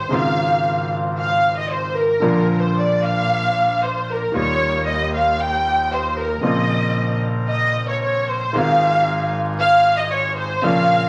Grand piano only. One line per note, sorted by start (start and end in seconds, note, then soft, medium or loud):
0.09 2.11 G#1 medium
0.09 2.11 G#2 medium
0.09 2.10 C#3 soft
0.09 2.11 G#3 soft
0.09 2.12 C4 soft
0.09 2.12 F4 medium
2.20 4.22 A#1 medium
2.20 4.22 A#2 medium
2.20 4.21 D3 medium
2.20 4.21 F3 soft
2.20 4.22 A#3 soft
2.20 4.23 F4 medium
4.32 6.33 D#2 medium
4.32 6.33 D#3 medium
4.32 6.33 G3 soft
4.32 6.34 A#3 soft
4.32 6.34 F4 medium
6.41 8.44 A#1 medium
6.41 8.44 A#2 medium
6.41 8.43 C#3 soft
6.41 8.43 A#3 soft
6.41 8.44 C4 soft
6.45 8.45 F4 medium
8.53 10.54 G#1 medium
8.53 10.54 G#2 medium
8.53 10.53 D#3 medium
8.53 10.54 G#3 soft
8.53 10.54 C4 soft
8.53 10.55 F4 medium
10.62 11.09 A#1 medium
10.62 11.09 A#2 medium
10.62 11.09 C#3 medium
10.62 11.09 F3 medium
10.62 11.09 A#3 soft
10.66 11.09 F4 medium